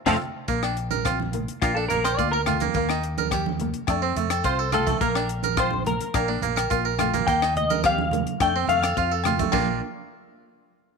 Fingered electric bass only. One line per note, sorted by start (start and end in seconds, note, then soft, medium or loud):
0.06 0.17 F2 medium
0.48 1.46 A#1 medium
1.62 1.86 A#1 medium
1.91 2.15 A#1 medium
2.18 2.67 D2 loud
2.75 3.72 D#2 medium
3.88 4.13 F2 medium
4.16 4.41 F2 loud
4.45 4.94 C2 loud
5.01 5.98 A#1 loud
6.15 6.39 A#1 medium
6.41 6.66 A#1 medium
6.71 7.20 A#1 medium
7.28 8.24 D#2 loud
8.40 8.65 F2 medium
8.68 8.92 F2 medium
8.97 9.45 F2 loud
9.53 9.79 A#1 medium